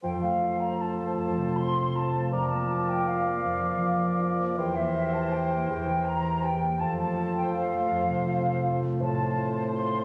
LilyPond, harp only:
\new Staff \with { instrumentName = "Harp" } { \time 3/4 \key f \major \tempo 4 = 160 f,8 a8 f'8 c''8 f'8 a8 | f,8 c8 f'4 f'8 a8 | f,8 bes8 f'8 d''4 bes8 | f,8 f8 f'8 d''8 f'8 bes8 |
e,8 bes8 g'8 c''8 g'8 bes8 | e,8 e8 g'8 c''8 g'8 bes8 | f,8 a8 f'8 c''8 f'8 a8 | f,8 c8 f'8 c''8 f'8 a8 |
a,8 c'8 f'8 c''8 f'8 c'8 | }